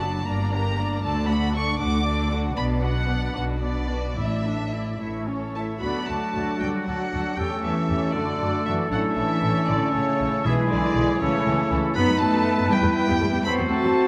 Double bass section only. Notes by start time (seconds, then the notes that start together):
Already playing: F#1
0.27 G1
1.04 D2
1.80 D2
2.56 B1
3.35 B1
4.18 A1
5.00 A1
5.82 D2
6.08 D2
6.35 D2
6.61 D2
6.87 D2
7.12 D2
7.38 E2
7.64 E2
7.89 E2
8.15 F#2
8.41 F#2
8.67 F#2
8.91 A1
9.17 A1
9.42 A1
9.68 A1
9.94 A1
10.20 A1
10.45 B1
10.70 B1
10.96 B1
11.21 C#2
11.46 C#2
11.71 C#2
11.96 F#2
12.09 F#2
12.21 F#2
12.32 F#2
12.58 F#2
12.70 E2
12.82 E2
13.08 E2
13.21 E2
13.34 E2
13.45 E2
13.58 E2
13.71 E2
13.83 E2